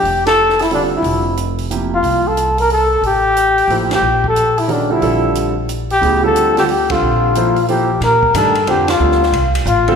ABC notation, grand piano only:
X:1
M:3/4
L:1/8
Q:"Swing" 1/4=181
K:F
V:1 name="Grand piano"
z4 [D,G,CFA]2- | [D,G,CFA] z3 [C,F,B,EG]2- | [C,F,B,EG] z4 z | z4 [F,B,EAc]2 |
z4 [_E,_A,_D_GB] [=D,=G,CF=A] | [D,F,G,CA]3 z3 | [_D,_G,=B,E_A] [=D,=G,CF=A]2 [D,G,CFA] z [D,G,CFA]- | [D,G,CFA]2 [F,B,EAc] z [F,B,EAc] z |
[K:Bb] z2 [E,A,DGB] z [D,G,CFc] z | [D,G,CFA] z4 [D,G,CFA] |]